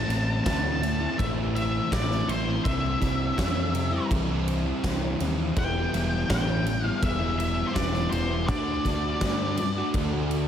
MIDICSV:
0, 0, Header, 1, 6, 480
1, 0, Start_track
1, 0, Key_signature, 0, "minor"
1, 0, Tempo, 729927
1, 1738, Time_signature, 4, 2, 24, 8
1, 6891, End_track
2, 0, Start_track
2, 0, Title_t, "Lead electric guitar"
2, 0, Program_c, 0, 29
2, 0, Note_on_c, 0, 81, 119
2, 280, Note_off_c, 0, 81, 0
2, 288, Note_on_c, 0, 81, 105
2, 777, Note_on_c, 0, 76, 78
2, 787, Note_off_c, 0, 81, 0
2, 842, Note_off_c, 0, 76, 0
2, 1022, Note_on_c, 0, 76, 102
2, 1263, Note_off_c, 0, 76, 0
2, 1265, Note_on_c, 0, 74, 95
2, 1501, Note_on_c, 0, 72, 85
2, 1509, Note_off_c, 0, 74, 0
2, 1723, Note_off_c, 0, 72, 0
2, 1739, Note_on_c, 0, 76, 92
2, 2673, Note_off_c, 0, 76, 0
2, 3673, Note_on_c, 0, 79, 105
2, 4139, Note_off_c, 0, 79, 0
2, 4147, Note_on_c, 0, 79, 103
2, 4508, Note_off_c, 0, 79, 0
2, 4508, Note_on_c, 0, 77, 103
2, 4621, Note_on_c, 0, 76, 100
2, 4637, Note_off_c, 0, 77, 0
2, 4849, Note_off_c, 0, 76, 0
2, 4857, Note_on_c, 0, 76, 103
2, 5037, Note_off_c, 0, 76, 0
2, 5041, Note_on_c, 0, 72, 67
2, 5086, Note_on_c, 0, 74, 90
2, 5092, Note_off_c, 0, 72, 0
2, 5315, Note_off_c, 0, 74, 0
2, 5328, Note_on_c, 0, 72, 92
2, 5567, Note_on_c, 0, 74, 86
2, 5580, Note_off_c, 0, 72, 0
2, 6505, Note_off_c, 0, 74, 0
2, 6891, End_track
3, 0, Start_track
3, 0, Title_t, "Distorted electric guitar"
3, 0, Program_c, 1, 30
3, 0, Note_on_c, 1, 45, 99
3, 53, Note_on_c, 1, 52, 74
3, 59, Note_on_c, 1, 57, 81
3, 60, Note_on_c, 1, 60, 77
3, 68, Note_on_c, 1, 64, 84
3, 284, Note_off_c, 1, 45, 0
3, 291, Note_on_c, 1, 45, 98
3, 295, Note_off_c, 1, 57, 0
3, 298, Note_off_c, 1, 52, 0
3, 301, Note_on_c, 1, 52, 89
3, 303, Note_on_c, 1, 57, 97
3, 304, Note_off_c, 1, 60, 0
3, 306, Note_off_c, 1, 64, 0
3, 307, Note_on_c, 1, 60, 109
3, 309, Note_on_c, 1, 64, 106
3, 406, Note_off_c, 1, 64, 0
3, 409, Note_on_c, 1, 64, 76
3, 415, Note_off_c, 1, 60, 0
3, 418, Note_off_c, 1, 57, 0
3, 418, Note_on_c, 1, 60, 63
3, 426, Note_on_c, 1, 57, 62
3, 531, Note_off_c, 1, 57, 0
3, 534, Note_off_c, 1, 52, 0
3, 538, Note_off_c, 1, 60, 0
3, 541, Note_off_c, 1, 64, 0
3, 655, Note_off_c, 1, 45, 0
3, 659, Note_on_c, 1, 64, 71
3, 667, Note_on_c, 1, 60, 66
3, 677, Note_on_c, 1, 57, 63
3, 769, Note_off_c, 1, 57, 0
3, 769, Note_on_c, 1, 52, 72
3, 774, Note_off_c, 1, 60, 0
3, 777, Note_on_c, 1, 57, 75
3, 782, Note_on_c, 1, 60, 74
3, 788, Note_off_c, 1, 64, 0
3, 790, Note_on_c, 1, 64, 73
3, 895, Note_off_c, 1, 64, 0
3, 898, Note_on_c, 1, 64, 76
3, 902, Note_off_c, 1, 60, 0
3, 909, Note_off_c, 1, 57, 0
3, 910, Note_on_c, 1, 60, 65
3, 916, Note_on_c, 1, 57, 59
3, 1253, Note_on_c, 1, 45, 100
3, 1258, Note_off_c, 1, 57, 0
3, 1260, Note_off_c, 1, 52, 0
3, 1261, Note_off_c, 1, 60, 0
3, 1263, Note_on_c, 1, 52, 99
3, 1266, Note_on_c, 1, 57, 89
3, 1269, Note_on_c, 1, 60, 92
3, 1271, Note_off_c, 1, 64, 0
3, 1274, Note_on_c, 1, 64, 99
3, 1376, Note_off_c, 1, 64, 0
3, 1379, Note_on_c, 1, 64, 88
3, 1380, Note_off_c, 1, 60, 0
3, 1387, Note_on_c, 1, 60, 70
3, 1389, Note_off_c, 1, 57, 0
3, 1397, Note_on_c, 1, 57, 76
3, 1500, Note_off_c, 1, 57, 0
3, 1501, Note_off_c, 1, 52, 0
3, 1503, Note_on_c, 1, 52, 72
3, 1508, Note_off_c, 1, 60, 0
3, 1508, Note_on_c, 1, 57, 84
3, 1516, Note_off_c, 1, 64, 0
3, 1516, Note_on_c, 1, 60, 85
3, 1518, Note_on_c, 1, 64, 94
3, 1616, Note_off_c, 1, 45, 0
3, 1620, Note_off_c, 1, 64, 0
3, 1622, Note_off_c, 1, 60, 0
3, 1622, Note_on_c, 1, 64, 71
3, 1630, Note_off_c, 1, 57, 0
3, 1630, Note_on_c, 1, 60, 64
3, 1638, Note_on_c, 1, 57, 64
3, 1730, Note_off_c, 1, 60, 0
3, 1734, Note_off_c, 1, 57, 0
3, 1739, Note_on_c, 1, 48, 98
3, 1740, Note_off_c, 1, 52, 0
3, 1743, Note_on_c, 1, 52, 100
3, 1749, Note_on_c, 1, 55, 107
3, 1751, Note_on_c, 1, 60, 114
3, 1753, Note_off_c, 1, 64, 0
3, 1756, Note_on_c, 1, 64, 116
3, 1973, Note_off_c, 1, 52, 0
3, 1976, Note_on_c, 1, 52, 79
3, 1979, Note_off_c, 1, 55, 0
3, 1980, Note_off_c, 1, 60, 0
3, 1982, Note_on_c, 1, 55, 83
3, 1988, Note_on_c, 1, 60, 81
3, 1989, Note_off_c, 1, 64, 0
3, 1991, Note_on_c, 1, 64, 83
3, 2207, Note_off_c, 1, 48, 0
3, 2215, Note_off_c, 1, 52, 0
3, 2215, Note_on_c, 1, 48, 102
3, 2218, Note_on_c, 1, 52, 101
3, 2219, Note_off_c, 1, 60, 0
3, 2222, Note_off_c, 1, 55, 0
3, 2225, Note_on_c, 1, 55, 118
3, 2227, Note_on_c, 1, 60, 102
3, 2229, Note_off_c, 1, 64, 0
3, 2232, Note_on_c, 1, 64, 107
3, 2330, Note_off_c, 1, 64, 0
3, 2333, Note_on_c, 1, 64, 66
3, 2334, Note_off_c, 1, 60, 0
3, 2342, Note_on_c, 1, 60, 71
3, 2347, Note_off_c, 1, 55, 0
3, 2349, Note_on_c, 1, 55, 61
3, 2450, Note_off_c, 1, 60, 0
3, 2453, Note_off_c, 1, 55, 0
3, 2454, Note_off_c, 1, 52, 0
3, 2458, Note_off_c, 1, 64, 0
3, 2571, Note_on_c, 1, 64, 71
3, 2577, Note_off_c, 1, 48, 0
3, 2582, Note_on_c, 1, 60, 66
3, 2589, Note_on_c, 1, 55, 59
3, 2691, Note_off_c, 1, 55, 0
3, 2693, Note_on_c, 1, 52, 87
3, 2699, Note_off_c, 1, 60, 0
3, 2699, Note_on_c, 1, 55, 70
3, 2704, Note_off_c, 1, 64, 0
3, 2707, Note_on_c, 1, 60, 75
3, 2711, Note_on_c, 1, 64, 82
3, 2812, Note_off_c, 1, 64, 0
3, 2819, Note_off_c, 1, 60, 0
3, 2820, Note_on_c, 1, 64, 76
3, 2825, Note_off_c, 1, 55, 0
3, 2827, Note_on_c, 1, 60, 70
3, 2833, Note_on_c, 1, 55, 52
3, 3056, Note_off_c, 1, 52, 0
3, 3181, Note_on_c, 1, 48, 89
3, 3182, Note_off_c, 1, 55, 0
3, 3183, Note_off_c, 1, 60, 0
3, 3184, Note_on_c, 1, 52, 106
3, 3187, Note_off_c, 1, 64, 0
3, 3190, Note_on_c, 1, 55, 88
3, 3191, Note_on_c, 1, 60, 101
3, 3195, Note_on_c, 1, 64, 104
3, 3289, Note_off_c, 1, 64, 0
3, 3296, Note_on_c, 1, 64, 87
3, 3298, Note_off_c, 1, 60, 0
3, 3305, Note_off_c, 1, 55, 0
3, 3306, Note_on_c, 1, 60, 84
3, 3313, Note_on_c, 1, 55, 71
3, 3412, Note_off_c, 1, 52, 0
3, 3418, Note_off_c, 1, 55, 0
3, 3420, Note_on_c, 1, 52, 79
3, 3426, Note_off_c, 1, 60, 0
3, 3426, Note_on_c, 1, 55, 89
3, 3429, Note_off_c, 1, 64, 0
3, 3434, Note_on_c, 1, 60, 90
3, 3437, Note_on_c, 1, 64, 81
3, 3526, Note_off_c, 1, 64, 0
3, 3533, Note_on_c, 1, 64, 72
3, 3537, Note_off_c, 1, 60, 0
3, 3540, Note_off_c, 1, 48, 0
3, 3545, Note_on_c, 1, 60, 58
3, 3547, Note_off_c, 1, 55, 0
3, 3555, Note_on_c, 1, 55, 50
3, 3639, Note_off_c, 1, 52, 0
3, 3642, Note_off_c, 1, 64, 0
3, 3647, Note_off_c, 1, 60, 0
3, 3647, Note_on_c, 1, 52, 100
3, 3652, Note_off_c, 1, 55, 0
3, 3659, Note_on_c, 1, 55, 111
3, 3661, Note_on_c, 1, 59, 112
3, 3665, Note_on_c, 1, 64, 111
3, 3890, Note_off_c, 1, 52, 0
3, 3897, Note_off_c, 1, 55, 0
3, 3898, Note_on_c, 1, 52, 78
3, 3905, Note_off_c, 1, 59, 0
3, 3905, Note_on_c, 1, 55, 82
3, 3910, Note_off_c, 1, 64, 0
3, 3913, Note_on_c, 1, 59, 81
3, 3917, Note_on_c, 1, 64, 87
3, 4122, Note_off_c, 1, 52, 0
3, 4129, Note_off_c, 1, 55, 0
3, 4130, Note_on_c, 1, 52, 101
3, 4137, Note_on_c, 1, 55, 105
3, 4139, Note_off_c, 1, 59, 0
3, 4140, Note_off_c, 1, 64, 0
3, 4147, Note_on_c, 1, 59, 111
3, 4148, Note_on_c, 1, 64, 107
3, 4247, Note_off_c, 1, 64, 0
3, 4255, Note_on_c, 1, 64, 71
3, 4259, Note_off_c, 1, 59, 0
3, 4263, Note_off_c, 1, 55, 0
3, 4267, Note_on_c, 1, 59, 67
3, 4271, Note_on_c, 1, 55, 55
3, 4378, Note_off_c, 1, 52, 0
3, 4379, Note_off_c, 1, 55, 0
3, 4380, Note_off_c, 1, 59, 0
3, 4381, Note_off_c, 1, 64, 0
3, 4496, Note_on_c, 1, 64, 79
3, 4505, Note_on_c, 1, 59, 69
3, 4514, Note_on_c, 1, 55, 70
3, 4609, Note_off_c, 1, 55, 0
3, 4609, Note_on_c, 1, 52, 78
3, 4614, Note_off_c, 1, 59, 0
3, 4617, Note_on_c, 1, 55, 83
3, 4620, Note_off_c, 1, 64, 0
3, 4622, Note_on_c, 1, 59, 84
3, 4628, Note_on_c, 1, 64, 79
3, 4722, Note_off_c, 1, 64, 0
3, 4730, Note_on_c, 1, 64, 71
3, 4732, Note_off_c, 1, 59, 0
3, 4740, Note_off_c, 1, 55, 0
3, 4740, Note_on_c, 1, 59, 54
3, 4748, Note_on_c, 1, 55, 64
3, 4974, Note_off_c, 1, 52, 0
3, 5085, Note_on_c, 1, 52, 89
3, 5086, Note_off_c, 1, 55, 0
3, 5090, Note_off_c, 1, 59, 0
3, 5094, Note_off_c, 1, 64, 0
3, 5094, Note_on_c, 1, 55, 88
3, 5098, Note_on_c, 1, 59, 95
3, 5102, Note_on_c, 1, 64, 107
3, 5210, Note_off_c, 1, 64, 0
3, 5218, Note_on_c, 1, 64, 84
3, 5220, Note_off_c, 1, 59, 0
3, 5226, Note_off_c, 1, 55, 0
3, 5228, Note_on_c, 1, 59, 65
3, 5234, Note_on_c, 1, 55, 64
3, 5331, Note_off_c, 1, 52, 0
3, 5335, Note_off_c, 1, 55, 0
3, 5339, Note_on_c, 1, 52, 85
3, 5342, Note_off_c, 1, 59, 0
3, 5343, Note_on_c, 1, 55, 70
3, 5347, Note_off_c, 1, 64, 0
3, 5350, Note_on_c, 1, 59, 82
3, 5355, Note_on_c, 1, 64, 79
3, 5448, Note_off_c, 1, 64, 0
3, 5456, Note_on_c, 1, 64, 68
3, 5458, Note_off_c, 1, 59, 0
3, 5466, Note_off_c, 1, 55, 0
3, 5466, Note_on_c, 1, 59, 64
3, 5474, Note_on_c, 1, 55, 52
3, 5562, Note_off_c, 1, 64, 0
3, 5564, Note_off_c, 1, 52, 0
3, 5567, Note_off_c, 1, 59, 0
3, 5572, Note_off_c, 1, 55, 0
3, 5582, Note_on_c, 1, 50, 99
3, 5590, Note_on_c, 1, 57, 110
3, 5596, Note_on_c, 1, 62, 101
3, 5601, Note_on_c, 1, 66, 103
3, 5817, Note_off_c, 1, 50, 0
3, 5825, Note_on_c, 1, 50, 75
3, 5831, Note_off_c, 1, 62, 0
3, 5832, Note_off_c, 1, 57, 0
3, 5835, Note_on_c, 1, 57, 91
3, 5837, Note_off_c, 1, 66, 0
3, 5839, Note_on_c, 1, 62, 84
3, 5844, Note_on_c, 1, 66, 84
3, 6056, Note_off_c, 1, 50, 0
3, 6064, Note_on_c, 1, 50, 91
3, 6065, Note_off_c, 1, 62, 0
3, 6066, Note_off_c, 1, 57, 0
3, 6069, Note_on_c, 1, 57, 104
3, 6071, Note_off_c, 1, 66, 0
3, 6073, Note_on_c, 1, 62, 90
3, 6079, Note_on_c, 1, 66, 111
3, 6178, Note_off_c, 1, 66, 0
3, 6186, Note_on_c, 1, 66, 68
3, 6188, Note_off_c, 1, 62, 0
3, 6196, Note_on_c, 1, 62, 68
3, 6202, Note_off_c, 1, 57, 0
3, 6205, Note_on_c, 1, 57, 53
3, 6301, Note_off_c, 1, 50, 0
3, 6305, Note_off_c, 1, 62, 0
3, 6307, Note_off_c, 1, 66, 0
3, 6308, Note_off_c, 1, 57, 0
3, 6428, Note_on_c, 1, 66, 65
3, 6437, Note_on_c, 1, 62, 60
3, 6443, Note_on_c, 1, 57, 59
3, 6542, Note_off_c, 1, 57, 0
3, 6543, Note_on_c, 1, 50, 72
3, 6546, Note_off_c, 1, 62, 0
3, 6549, Note_on_c, 1, 57, 68
3, 6552, Note_off_c, 1, 66, 0
3, 6554, Note_on_c, 1, 62, 86
3, 6560, Note_on_c, 1, 66, 82
3, 6653, Note_off_c, 1, 66, 0
3, 6661, Note_on_c, 1, 66, 75
3, 6662, Note_off_c, 1, 62, 0
3, 6670, Note_off_c, 1, 57, 0
3, 6670, Note_on_c, 1, 62, 56
3, 6678, Note_on_c, 1, 57, 56
3, 6891, Note_off_c, 1, 50, 0
3, 6891, Note_off_c, 1, 57, 0
3, 6891, Note_off_c, 1, 62, 0
3, 6891, Note_off_c, 1, 66, 0
3, 6891, End_track
4, 0, Start_track
4, 0, Title_t, "Picked electric bass"
4, 0, Program_c, 2, 34
4, 51, Note_on_c, 2, 33, 93
4, 251, Note_off_c, 2, 33, 0
4, 300, Note_on_c, 2, 38, 78
4, 694, Note_off_c, 2, 38, 0
4, 786, Note_on_c, 2, 33, 88
4, 1177, Note_off_c, 2, 33, 0
4, 1260, Note_on_c, 2, 33, 92
4, 1457, Note_off_c, 2, 33, 0
4, 1494, Note_on_c, 2, 33, 93
4, 1693, Note_off_c, 2, 33, 0
4, 1745, Note_on_c, 2, 36, 88
4, 1940, Note_off_c, 2, 36, 0
4, 1982, Note_on_c, 2, 36, 82
4, 2178, Note_off_c, 2, 36, 0
4, 2224, Note_on_c, 2, 41, 88
4, 2617, Note_off_c, 2, 41, 0
4, 2702, Note_on_c, 2, 36, 91
4, 3095, Note_off_c, 2, 36, 0
4, 3179, Note_on_c, 2, 36, 100
4, 3376, Note_off_c, 2, 36, 0
4, 3423, Note_on_c, 2, 39, 100
4, 3618, Note_off_c, 2, 39, 0
4, 3659, Note_on_c, 2, 28, 99
4, 3856, Note_off_c, 2, 28, 0
4, 3899, Note_on_c, 2, 28, 90
4, 4096, Note_off_c, 2, 28, 0
4, 4143, Note_on_c, 2, 33, 89
4, 4535, Note_off_c, 2, 33, 0
4, 4618, Note_on_c, 2, 28, 99
4, 5012, Note_off_c, 2, 28, 0
4, 5100, Note_on_c, 2, 28, 93
4, 5297, Note_off_c, 2, 28, 0
4, 5336, Note_on_c, 2, 28, 100
4, 5579, Note_off_c, 2, 28, 0
4, 5579, Note_on_c, 2, 38, 91
4, 5776, Note_off_c, 2, 38, 0
4, 5819, Note_on_c, 2, 38, 97
4, 6016, Note_off_c, 2, 38, 0
4, 6057, Note_on_c, 2, 43, 81
4, 6451, Note_off_c, 2, 43, 0
4, 6538, Note_on_c, 2, 38, 89
4, 6891, Note_off_c, 2, 38, 0
4, 6891, End_track
5, 0, Start_track
5, 0, Title_t, "Muted distorted electric guitar strokes"
5, 537, Note_on_c, 9, 29, 40
5, 602, Note_off_c, 9, 29, 0
5, 2456, Note_on_c, 9, 29, 43
5, 2521, Note_off_c, 9, 29, 0
5, 4386, Note_on_c, 9, 29, 42
5, 4451, Note_off_c, 9, 29, 0
5, 6309, Note_on_c, 9, 29, 45
5, 6375, Note_off_c, 9, 29, 0
5, 6891, End_track
6, 0, Start_track
6, 0, Title_t, "Drums"
6, 66, Note_on_c, 9, 51, 75
6, 67, Note_on_c, 9, 38, 34
6, 132, Note_off_c, 9, 51, 0
6, 133, Note_off_c, 9, 38, 0
6, 302, Note_on_c, 9, 36, 91
6, 303, Note_on_c, 9, 51, 104
6, 304, Note_on_c, 9, 38, 124
6, 367, Note_off_c, 9, 36, 0
6, 369, Note_off_c, 9, 51, 0
6, 370, Note_off_c, 9, 38, 0
6, 547, Note_on_c, 9, 51, 72
6, 613, Note_off_c, 9, 51, 0
6, 784, Note_on_c, 9, 36, 117
6, 788, Note_on_c, 9, 51, 95
6, 850, Note_off_c, 9, 36, 0
6, 854, Note_off_c, 9, 51, 0
6, 1027, Note_on_c, 9, 51, 59
6, 1093, Note_off_c, 9, 51, 0
6, 1263, Note_on_c, 9, 36, 93
6, 1267, Note_on_c, 9, 51, 109
6, 1268, Note_on_c, 9, 38, 122
6, 1329, Note_off_c, 9, 36, 0
6, 1333, Note_off_c, 9, 51, 0
6, 1334, Note_off_c, 9, 38, 0
6, 1389, Note_on_c, 9, 38, 33
6, 1455, Note_off_c, 9, 38, 0
6, 1507, Note_on_c, 9, 51, 80
6, 1572, Note_off_c, 9, 51, 0
6, 1744, Note_on_c, 9, 36, 127
6, 1748, Note_on_c, 9, 51, 101
6, 1810, Note_off_c, 9, 36, 0
6, 1814, Note_off_c, 9, 51, 0
6, 1983, Note_on_c, 9, 36, 76
6, 1986, Note_on_c, 9, 51, 70
6, 1988, Note_on_c, 9, 38, 32
6, 2049, Note_off_c, 9, 36, 0
6, 2052, Note_off_c, 9, 51, 0
6, 2053, Note_off_c, 9, 38, 0
6, 2223, Note_on_c, 9, 36, 97
6, 2227, Note_on_c, 9, 51, 116
6, 2228, Note_on_c, 9, 38, 118
6, 2288, Note_off_c, 9, 36, 0
6, 2293, Note_off_c, 9, 51, 0
6, 2294, Note_off_c, 9, 38, 0
6, 2463, Note_on_c, 9, 51, 85
6, 2529, Note_off_c, 9, 51, 0
6, 2702, Note_on_c, 9, 36, 117
6, 2705, Note_on_c, 9, 51, 105
6, 2768, Note_off_c, 9, 36, 0
6, 2770, Note_off_c, 9, 51, 0
6, 2943, Note_on_c, 9, 51, 69
6, 3009, Note_off_c, 9, 51, 0
6, 3181, Note_on_c, 9, 36, 81
6, 3184, Note_on_c, 9, 51, 86
6, 3185, Note_on_c, 9, 38, 108
6, 3247, Note_off_c, 9, 36, 0
6, 3249, Note_off_c, 9, 51, 0
6, 3251, Note_off_c, 9, 38, 0
6, 3421, Note_on_c, 9, 51, 74
6, 3487, Note_off_c, 9, 51, 0
6, 3659, Note_on_c, 9, 51, 99
6, 3661, Note_on_c, 9, 36, 123
6, 3725, Note_off_c, 9, 51, 0
6, 3726, Note_off_c, 9, 36, 0
6, 3905, Note_on_c, 9, 51, 73
6, 3907, Note_on_c, 9, 38, 31
6, 3971, Note_off_c, 9, 51, 0
6, 3972, Note_off_c, 9, 38, 0
6, 4141, Note_on_c, 9, 36, 86
6, 4142, Note_on_c, 9, 51, 92
6, 4143, Note_on_c, 9, 38, 125
6, 4207, Note_off_c, 9, 36, 0
6, 4208, Note_off_c, 9, 51, 0
6, 4209, Note_off_c, 9, 38, 0
6, 4382, Note_on_c, 9, 51, 70
6, 4448, Note_off_c, 9, 51, 0
6, 4620, Note_on_c, 9, 36, 112
6, 4620, Note_on_c, 9, 51, 100
6, 4686, Note_off_c, 9, 36, 0
6, 4686, Note_off_c, 9, 51, 0
6, 4864, Note_on_c, 9, 51, 67
6, 4930, Note_off_c, 9, 51, 0
6, 5100, Note_on_c, 9, 36, 76
6, 5102, Note_on_c, 9, 51, 91
6, 5103, Note_on_c, 9, 38, 109
6, 5166, Note_off_c, 9, 36, 0
6, 5168, Note_off_c, 9, 51, 0
6, 5169, Note_off_c, 9, 38, 0
6, 5221, Note_on_c, 9, 38, 29
6, 5287, Note_off_c, 9, 38, 0
6, 5342, Note_on_c, 9, 51, 75
6, 5407, Note_off_c, 9, 51, 0
6, 5580, Note_on_c, 9, 36, 122
6, 5583, Note_on_c, 9, 51, 111
6, 5645, Note_off_c, 9, 36, 0
6, 5649, Note_off_c, 9, 51, 0
6, 5819, Note_on_c, 9, 36, 73
6, 5823, Note_on_c, 9, 51, 76
6, 5824, Note_on_c, 9, 38, 33
6, 5885, Note_off_c, 9, 36, 0
6, 5889, Note_off_c, 9, 51, 0
6, 5890, Note_off_c, 9, 38, 0
6, 6057, Note_on_c, 9, 51, 117
6, 6058, Note_on_c, 9, 36, 91
6, 6058, Note_on_c, 9, 38, 113
6, 6123, Note_off_c, 9, 36, 0
6, 6123, Note_off_c, 9, 51, 0
6, 6124, Note_off_c, 9, 38, 0
6, 6296, Note_on_c, 9, 51, 83
6, 6361, Note_off_c, 9, 51, 0
6, 6536, Note_on_c, 9, 51, 113
6, 6537, Note_on_c, 9, 36, 104
6, 6601, Note_off_c, 9, 51, 0
6, 6602, Note_off_c, 9, 36, 0
6, 6778, Note_on_c, 9, 51, 68
6, 6844, Note_off_c, 9, 51, 0
6, 6891, End_track
0, 0, End_of_file